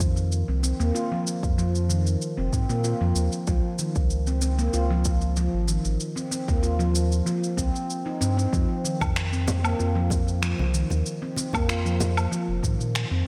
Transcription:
Already playing: sub bass F2
0.00 handpan D#3, kick, shaker
0.17 shaker
0.32 shaker
0.48 sub bass C2, handpan C4
0.63 handpan C4, shaker
0.80 sub bass D#2, handpan A#3, shaker
0.95 handpan F4, shaker
1.12 handpan F3
1.27 shaker
1.43 sub bass F2, kick, shaker
1.58 handpan F3, shaker
1.75 shaker
1.89 handpan D#3, shaker
2.07 shaker
2.22 shaker
2.38 sub bass F1, handpan C4
2.53 sub bass G#2, handpan C4, kick, shaker
2.69 sub bass A#2, handpan A#3, shaker
2.84 handpan F4, shaker
3.01 sub bass F2, handpan F3
3.15 sub bass D#2, shaker
3.32 shaker
3.47 sub bass C#2, handpan F3, kick, shaker
3.79 handpan D#3, shaker
3.96 sub bass C#2, kick, shaker
4.10 shaker
4.27 handpan C4, shaker
4.42 handpan C4, shaker
4.59 handpan A#3, shaker
4.74 sub bass C#2, handpan F4, shaker
4.91 handpan F3
5.05 kick, shaker
5.21 shaker
5.36 handpan F3, shaker
5.53 sub bass G#1
5.68 handpan D#3, shaker
5.85 sub bass G#1, shaker
6.00 shaker
6.16 handpan C4, shaker
6.31 handpan C4, shaker
6.48 sub bass D#2, handpan A#3, kick, shaker
6.63 handpan F4, shaker
6.79 handpan F3, shaker
6.95 shaker
7.12 shaker
7.26 handpan F3, shaker
7.44 shaker
7.57 sub bass C#2, handpan C4, kick, shaker
7.76 shaker
7.90 shaker
8.06 handpan D#4
8.21 sub bass G2, handpan C4, shaker
8.37 handpan C4, shaker
8.53 sub bass F2, handpan F3, kick, shaker
8.84 handpan D#3, shaker
9.01 sub bass F2, kick, high conga, low woodblock, shaker
9.16 finger snap, shaker
9.33 handpan C4, shaker
9.47 handpan C4, low conga, shaker
9.64 handpan A#3, low woodblock, shaker
9.79 sub bass F2, handpan F4, shaker
9.95 handpan F3
10.10 kick, low conga, shaker
10.28 shaker
10.42 handpan F3, finger snap, shaker
10.59 sub bass C2, high conga
10.74 handpan D#3, shaker
10.90 sub bass D#2, muted conga, high conga, shaker
11.06 shaker
11.22 handpan C4
11.36 handpan C4, muted conga, high conga, shaker
11.53 sub bass F2, handpan A#3, kick, high conga, low woodblock, shaker
11.69 handpan F4, finger snap, shaker
11.85 handpan F3, shaker
12.00 high conga, low conga, shaker
12.17 low woodblock, shaker
12.31 handpan F3, shaker
12.48 sub bass F1
12.63 sub bass G#2, handpan D#3, kick, muted conga, high conga, shaker
12.80 sub bass A#2, shaker
12.95 finger snap, shaker
13.11 sub bass F2, handpan C4

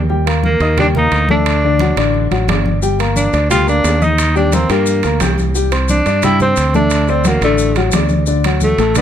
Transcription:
Already playing: fingered electric bass D#2
0.09 grand piano G3 G4 G5, high conga
0.26 grand piano A#3 A#4 A#5, high conga, high timbale
0.44 tenor saxophone A#3, high conga
0.60 fingered electric bass D#2, grand piano D#4 D#5 D#6, high conga, high timbale
0.77 grand piano G3 G4 G5, tenor saxophone D4, high conga, low conga, high timbale
0.95 grand piano A#3 A#4 A#5, tenor saxophone D#4, high conga, low conga
1.12 fingered electric bass D2, high conga, high timbale
1.29 grand piano A3 A4 A5, tenor saxophone D4, high conga
1.46 high timbale
1.63 grand piano D3 D4 D5, high conga
1.79 grand piano F#3 F#4 F#5, high conga, high timbale
1.97 fingered electric bass A1, grand piano D3 D4 D5, high timbale
2.14 high conga
2.31 fingered electric bass A1, grand piano F#3 F#4 F#5, high conga, high timbale
2.48 fingered electric bass G1, grand piano D4 D5 D6, high conga, high timbale, low timbale
2.66 high conga
2.82 grand piano G3 G4 G5, high conga, maracas
2.99 grand piano A#3 A#4 A#5, high conga, high timbale, maracas
3.16 tenor saxophone D4, high conga, maracas
3.33 fingered electric bass D2, grand piano D4 D5 D6, high conga, high timbale, maracas
3.50 grand piano G3 G4 G5, tenor saxophone F4, high conga, low conga, high timbale, maracas
3.67 grand piano A#3 A#4 A#5, tenor saxophone D4, high conga, maracas
3.84 fingered electric bass D#2, high conga, high timbale, low timbale, maracas
4.02 grand piano D#4 D#5 D#6, tenor saxophone D#4, high conga, maracas
4.18 high timbale, maracas
4.35 grand piano G3 G4 G5, tenor saxophone D4, high conga, maracas
4.52 grand piano A#3 A#4 A#5, tenor saxophone C4, high conga, high timbale, maracas
4.70 fingered electric bass G2, grand piano G3 G4 G5, tenor saxophone A#3, high timbale, maracas
4.86 high conga, maracas
5.03 fingered electric bass D2, grand piano A#3 A#4 A#5, high conga, high timbale, maracas
5.20 fingered electric bass C2, grand piano G4 G5 G6, high conga, high timbale, low timbale, maracas
5.38 high conga, maracas
5.55 grand piano G3 G4 G5, maracas
5.72 grand piano C4 C5 C6, high conga, high timbale, maracas
5.88 tenor saxophone D4, high conga, maracas
6.06 fingered electric bass G2, grand piano D4 D5 D6, high timbale, maracas
6.22 grand piano G3 G4 G5, tenor saxophone E4, high conga, low conga, high timbale, maracas
6.40 grand piano C4 C5 C6, tenor saxophone C4, high conga, low conga, maracas
6.56 fingered electric bass D2, high conga, high timbale, maracas
6.74 grand piano A3 A4 A5, tenor saxophone D4, high conga, maracas
6.90 high timbale, maracas
7.08 grand piano D3 D4 D5, tenor saxophone C4, high conga, maracas
7.24 grand piano F#3 F#4 F#5, tenor saxophone A#3, high conga, high timbale, maracas
7.41 fingered electric bass A1, grand piano D3 D4 D5, tenor saxophone A3, high timbale, maracas
7.58 high conga, maracas
7.76 grand piano F#3 F#4 F#5, high conga, high timbale, maracas
7.92 fingered electric bass D2, grand piano D4 D5 D6, high conga, high timbale, low timbale, maracas
8.09 high conga, maracas
8.26 grand piano D3 D4 D5, high conga, maracas
8.44 grand piano F#3 F#4 F#5, high conga, high timbale, maracas
8.61 tenor saxophone A3, high conga, maracas
8.78 fingered electric bass A1, grand piano A3 A4 A5, high conga, high timbale, maracas
8.95 grand piano D3 D4 D5, tenor saxophone C4, high conga, low conga, high timbale, maracas

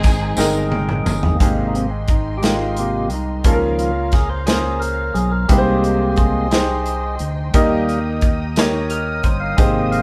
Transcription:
Already playing: fingered electric bass G#1, grand piano G#2 G#3 C4 D#4 G#4 G5, tonewheel organ D#3 G#3 C4 G#4, string section C4 D#4 G#4
0.03 kick, snare, closed hi-hat, tambourine
0.37 fingered electric bass G1, grand piano G#3 C4 D#4 A#4 G5, snare, tambourine
0.72 tonewheel organ G5, high tom
0.89 mid tom
1.06 fingered electric bass G1, tonewheel organ D#5, mid tom, tambourine
1.23 floor tom
1.35 tonewheel organ A#3
1.40 fingered electric bass G#1, grand piano G#2 G#3 C4 D#4 G4 G#4, tonewheel organ C3 G#3 A#3, string section D#5 G5 C6, kick, closed hi-hat
1.67 tonewheel organ D#4
1.75 tonewheel organ C4, closed hi-hat
2.08 tonewheel organ D#4, kick, closed hi-hat
2.37 tonewheel organ G4
2.42 grand piano G#3 C4 D#4 G4 A#4, tonewheel organ F4, snare, closed hi-hat
2.77 tonewheel organ C3 A#3 G4, closed hi-hat
3.10 fingered electric bass C2, tonewheel organ D#4, closed hi-hat
3.44 fingered electric bass C#2, grand piano C#3 A#3 C#4 F4 G#4 A4, tonewheel organ D#3 F3 A#3, string section F5 A#5, kick, closed hi-hat
3.53 grand piano A#4
3.79 tonewheel organ F4, closed hi-hat
4.12 tonewheel organ G#4, kick, snare, closed hi-hat
4.30 tonewheel organ C5
4.46 grand piano A#3 C#4 F4 G#4 C5, tonewheel organ G#4, snare, closed hi-hat
4.80 tonewheel organ A#4, closed hi-hat
5.14 fingered electric bass B1, tonewheel organ G#4, closed hi-hat
5.31 tonewheel organ A#4
5.48 fingered electric bass C2, tonewheel organ C3 G#3 A#3 G4, grand piano C3 C4 D#4 G4 G#4 B4, string section D#5 G5 C6, kick, closed hi-hat
5.58 grand piano C5
5.84 closed hi-hat
6.10 tonewheel organ G4
6.16 tonewheel organ G#4, kick, closed hi-hat
6.51 grand piano C4 D#4 G4 G#4 C5, snare, closed hi-hat
6.86 closed hi-hat
7.19 fingered electric bass D2, closed hi-hat
7.53 fingered electric bass D#2, tonewheel organ D#3 G3 A#3, grand piano D#3 A#3 D#4 G4 A#4 D#5, string section D#5 A#5 D#6, kick, closed hi-hat
7.89 closed hi-hat
8.21 kick, closed hi-hat
8.56 grand piano A#3 D#4 G4 A#4 C#5, snare, closed hi-hat
8.90 tonewheel organ A#4, closed hi-hat
9.23 fingered electric bass G1, tonewheel organ C5, kick, closed hi-hat
9.40 tonewheel organ F5
9.57 fingered electric bass G#1, grand piano G#2 C4 D#4 G4 G#4 C5, tonewheel organ C3 G#3 A#3 D#5, string section D#5 C6, kick, closed hi-hat
9.91 tonewheel organ F5, closed hi-hat

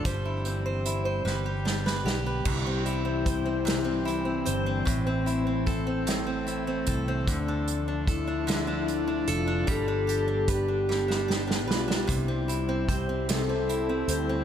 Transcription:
Already playing: steel-string acoustic guitar D3 D4 F4
0.05 fretless electric bass G1, analog synth pad E3 G3 C4, steel-string acoustic guitar G3 C5, kick, closed hi-hat
0.25 steel-string acoustic guitar E4
0.45 steel-string acoustic guitar C4, closed hi-hat
0.66 steel-string acoustic guitar C5
0.85 steel-string acoustic guitar E4, closed hi-hat
1.05 steel-string acoustic guitar C5
1.25 fretless electric bass G1, analog synth pad D3 B3, steel-string acoustic guitar G3 B4, snare
1.46 steel-string acoustic guitar G4
1.65 steel-string acoustic guitar D4, snare
1.86 steel-string acoustic guitar B4, snare
2.05 fretless electric bass B1, steel-string acoustic guitar G4, snare
2.26 steel-string acoustic guitar B4
2.45 fretless electric bass C2, steel-string acoustic guitar C3, analog synth pad E3 G3 C4, french horn section E4, kick, crash
2.67 steel-string acoustic guitar C4
2.86 steel-string acoustic guitar E4, closed hi-hat
3.05 steel-string acoustic guitar C4
3.26 steel-string acoustic guitar C5, kick, closed hi-hat
3.46 steel-string acoustic guitar C4
3.65 steel-string acoustic guitar C3, snare, closed hi-hat
3.85 steel-string acoustic guitar C4
4.05 steel-string acoustic guitar E4, closed hi-hat
4.25 steel-string acoustic guitar C4
4.46 fretless electric bass G1, french horn section D4, steel-string acoustic guitar C5, closed hi-hat
4.66 steel-string acoustic guitar C4
4.85 fretless electric bass A1, steel-string acoustic guitar A2, analog synth pad A3, french horn section C4, kick, closed hi-hat
5.07 steel-string acoustic guitar C4
5.26 steel-string acoustic guitar E4, closed hi-hat
5.47 steel-string acoustic guitar C4
5.66 steel-string acoustic guitar A4, kick, closed hi-hat
5.87 steel-string acoustic guitar C4
6.07 steel-string acoustic guitar A2, snare, closed hi-hat
6.27 steel-string acoustic guitar C4
6.47 steel-string acoustic guitar E4, closed hi-hat
6.67 steel-string acoustic guitar C4
6.87 fretless electric bass C2, french horn section E4, steel-string acoustic guitar A4, kick, closed hi-hat
7.08 steel-string acoustic guitar C4
7.28 fretless electric bass D2, steel-string acoustic guitar D3, analog synth pad F3 D4, french horn section D4, kick, closed hi-hat
7.48 steel-string acoustic guitar D4
7.68 closed hi-hat
7.88 steel-string acoustic guitar D4
8.07 french horn section E4, steel-string acoustic guitar A4, kick, closed hi-hat
8.27 steel-string acoustic guitar D4
8.47 steel-string acoustic guitar D3, snare, closed hi-hat
8.67 steel-string acoustic guitar D4
8.88 closed hi-hat
9.07 steel-string acoustic guitar D4
9.28 fretless electric bass F1, french horn section F4, steel-string acoustic guitar A4, closed hi-hat
9.47 steel-string acoustic guitar D4
9.67 fretless electric bass G1, analog synth pad G3 B3, steel-string acoustic guitar G3, french horn section A4, kick, closed hi-hat
9.88 steel-string acoustic guitar D4
10.07 steel-string acoustic guitar G4, closed hi-hat
10.28 steel-string acoustic guitar D4
10.48 french horn section G4, steel-string acoustic guitar B4, kick, closed hi-hat
10.68 steel-string acoustic guitar D4
10.89 steel-string acoustic guitar G3, snare
11.08 steel-string acoustic guitar D4, snare
11.28 steel-string acoustic guitar G4, snare
11.47 steel-string acoustic guitar D4, snare
11.68 fretless electric bass B1, french horn section F4, steel-string acoustic guitar B4, snare
11.88 steel-string acoustic guitar D4, snare
12.07 fretless electric bass C2, steel-string acoustic guitar C3, analog synth pad C4 E4, french horn section E4, kick, closed hi-hat
12.28 steel-string acoustic guitar C4
12.48 steel-string acoustic guitar E4, closed hi-hat
12.69 steel-string acoustic guitar C4
12.89 french horn section G4, steel-string acoustic guitar C5, kick, closed hi-hat
13.09 steel-string acoustic guitar C4
13.28 steel-string acoustic guitar C3, french horn section A4, snare, closed hi-hat
13.49 steel-string acoustic guitar C4
13.69 steel-string acoustic guitar E4, closed hi-hat
13.89 steel-string acoustic guitar C4
14.08 fretless electric bass D2, steel-string acoustic guitar C5, closed hi-hat
14.29 steel-string acoustic guitar C4

